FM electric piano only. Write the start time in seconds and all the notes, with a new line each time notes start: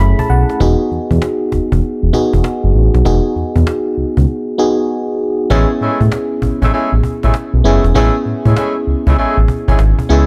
Already playing: A3 C#4 E4 G#4
0.00 B5
0.19 A5
0.30 F#5
0.60 B3 D#4 F#4 G#4
2.13 B3 D#4 F#4 G#4
3.05 B3 D#4 F#4 G#4
4.58 B3 D#4 F#4 G#4
5.50 B3 C#4 E4 G#4
7.64 B3 C#4 E4 G#4
7.94 B3 C#4 E4 G#4
10.09 B3 C#4 E4 G#4